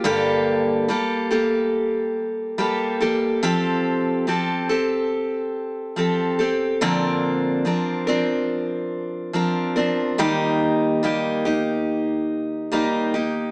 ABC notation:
X:1
M:4/4
L:1/8
Q:1/4=71
K:Bb
V:1 name="Steel-string acoustic guitar"
[G,,D,G,B,GA]2 [G,B,GA] [G,B,GA]3 [G,B,GA] [G,B,GA] | [F,CGA]2 [F,CGA] [CGA]3 [F,CGA] [CGA] | [B,,D,F,CDB]2 [F,CDB] [F,CDB]3 [F,CDB] [F,CDB] | [E,G,B,EG]2 [G,B,EG] [B,EG]3 [G,B,EG] [B,EG] |]